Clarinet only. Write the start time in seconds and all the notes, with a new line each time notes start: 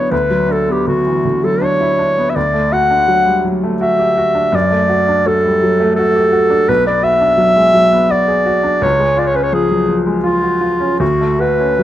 Already playing: C#5
0.11 B4
0.52 A4
0.72 G4
0.88 F#4
1.44 A4
1.64 C#5
2.30 E5
2.36 D5
2.73 F#5
3.82 E5
4.55 D5
5.27 A4
5.96 A4
6.69 B4
6.87 D5
7.04 E5
8.12 D5
8.83 C#5
9.19 D5
9.27 C#5
9.36 B4
9.43 C#5
9.54 G#4
10.25 F4
11.00 F#4
11.40 B4